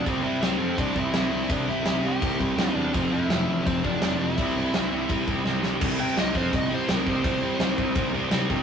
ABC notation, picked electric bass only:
X:1
M:4/4
L:1/8
Q:1/4=167
K:C
V:1 name="Picked electric bass" clef=bass
C,, C, C,, F,, C,, C,, C,, C,, | C,,2 C,, C,, C,, C,, C,, E,, | F,,, F,, F,,, A,,, F,,, F,,, F,,, F,,, | C,,2 C,, C,, C,, C,, C,, C,, |
C,, C, C,, F,, C,, C,, C,, C,, | C,,2 C,, C,, C,, C,, C,, C,, |]